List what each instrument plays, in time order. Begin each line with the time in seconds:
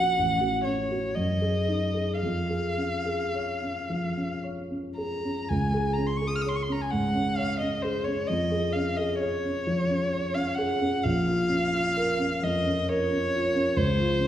Already playing: grand piano A#1 C#4 F#4, violin F#5
0.19 grand piano A1
0.41 grand piano F#4
0.64 grand piano C#4, violin C#5
0.91 grand piano F#4
1.15 grand piano F#2, violin D#5
1.41 grand piano G#4
1.68 grand piano D#4
1.94 grand piano G#4
2.20 grand piano F2, violin F5
2.50 grand piano G#4
2.77 grand piano C#4
3.06 grand piano G#4
3.35 grand piano C#5
3.63 grand piano C#4
3.90 grand piano F3
4.17 grand piano C#4
4.44 grand piano C#5
4.71 grand piano C#4
4.97 grand piano G#4, violin A#5
5.25 grand piano C#4
5.48 grand piano C#2, violin G#5
5.74 grand piano G#4
5.93 violin A#5
5.98 grand piano C#4
6.06 violin C6
6.17 violin C#6
6.22 grand piano G#4
6.28 violin D#6
6.35 violin F6
6.42 violin D#6
6.46 grand piano C#5, violin C6
6.56 violin C#6
6.62 violin C6
6.69 grand piano C#4, violin A#5
6.82 violin G#5
6.91 grand piano G#2, violin F#5
7.15 grand piano C#4
7.36 grand piano C#5, violin F5
7.60 grand piano C#4, violin D#5
7.82 grand piano G#4, violin C5
8.04 grand piano C#4, violin C#5
8.27 grand piano F2, violin D#5
8.51 grand piano G#4
8.73 grand piano C#4, violin F5
8.97 grand piano G#4, violin D#5
9.20 violin C#5, grand piano C#5
9.45 grand piano C#4
9.67 grand piano F3
9.90 grand piano C#4
10.13 grand piano C#5
10.34 grand piano C#4, violin F5
10.55 grand piano G#4, violin F#5
10.81 grand piano C#4
11.03 grand piano A#1, violin F5
11.28 grand piano F4
11.49 grand piano C#4
11.73 grand piano F4
11.97 grand piano A#4
12.19 grand piano C#4
12.43 grand piano F2, violin D#5
12.66 grand piano C#4
12.89 grand piano A#4, violin C#5
13.11 grand piano C#4
13.34 grand piano F4
13.55 grand piano C#4
13.77 grand piano C#2, violin C5
13.98 grand piano F4
14.19 grand piano C#4